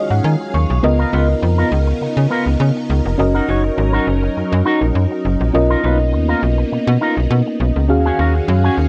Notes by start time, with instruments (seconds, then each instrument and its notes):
Already playing: string machine D#3 F#3 C#4 G#4 F5, fm electric piano G#3 F4 F#4 C#5
0.10 fm bass G#2, fm electric piano F#5, muted clean electric guitar stroke
0.24 fm bass D#3, fm electric piano G#5, muted clean electric guitar stroke
0.40 muted clean electric guitar stroke
0.54 fm bass D#2, fm electric piano C#6
0.70 fm bass B1, muted clean electric guitar stroke
0.83 fm bass C#2, string machine C#3 B3 D#4 A#4, fm electric piano B3 F4 A#4 D#5, muted clean electric guitar stroke
0.99 clean electric guitar B3 F4 A#4
1.12 fm bass C#2, clean electric guitar B3 F4 B4
1.28 muted clean electric guitar stroke
1.42 fm bass F2, muted clean electric guitar stroke
1.58 clean electric guitar B3 F4 A#4
1.72 fm bass C#2, muted clean electric guitar stroke
1.87 muted clean electric guitar stroke
2.01 fm bass C#3, muted clean electric guitar stroke
2.17 fm bass C#3, muted clean electric guitar stroke
2.30 clean electric guitar B3 F4 A#4
2.46 fm bass C#2, muted clean electric guitar stroke
2.60 fm bass C#3, muted clean electric guitar stroke
2.75 muted clean electric guitar stroke
2.90 fm bass C#2
3.05 fm bass F1, muted clean electric guitar stroke
3.18 fm bass F#1, string machine F#3 C#4, fm electric piano C#4 F#4 A#4 D#5, muted clean electric guitar stroke
3.34 clean electric guitar D#4 F#4 A#4
3.48 fm bass F#1, clean electric guitar D#4 F#4 C#5
3.64 muted clean electric guitar stroke
3.78 fm bass G#1, muted clean electric guitar stroke
3.93 clean electric guitar D#4 F#4 A#4
4.07 fm bass F#1, muted clean electric guitar stroke
4.23 muted clean electric guitar stroke
4.36 fm bass F#2, muted clean electric guitar stroke
4.52 fm bass F#2, muted clean electric guitar stroke
4.65 clean electric guitar D#4 F#4 A#4
4.81 fm bass A#1, muted clean electric guitar stroke
4.95 fm bass F#2, muted clean electric guitar stroke
5.11 muted clean electric guitar stroke
5.25 fm bass F#1
5.40 fm bass A#1, muted clean electric guitar stroke
5.53 fm bass B1, string machine A#3 B3, fm electric piano C#4 F4 A#4 D#5, muted clean electric guitar stroke
5.70 clean electric guitar D#4 F4 A#4
5.83 fm bass B1, clean electric guitar D#4 F4 B4
6.00 muted clean electric guitar stroke
6.13 fm bass D#2, muted clean electric guitar stroke
6.28 clean electric guitar D#4 F4 A#4
6.42 fm bass B1, muted clean electric guitar stroke
6.58 muted clean electric guitar stroke
6.72 fm bass B2, muted clean electric guitar stroke
6.87 fm bass B2, muted clean electric guitar stroke
7.01 clean electric guitar D#4 F4 A#4
7.17 fm bass B1, muted clean electric guitar stroke
7.30 fm bass B2, muted clean electric guitar stroke
7.46 muted clean electric guitar stroke
7.60 fm bass B1
7.76 fm bass C#2, muted clean electric guitar stroke
7.88 fm bass D#2, string machine D#3 C#4 F#4 G#4 F5, fm electric piano C#4 F#4 G#4 F5, muted clean electric guitar stroke
8.05 clean electric guitar C#4 F#4 G#4
8.19 fm bass D#2, clean electric guitar C#4 F#4 A#4
8.35 muted clean electric guitar stroke
8.48 fm bass F#2, muted clean electric guitar stroke
8.64 clean electric guitar C#4 F#4 G#4
8.77 fm bass D#2, muted clean electric guitar stroke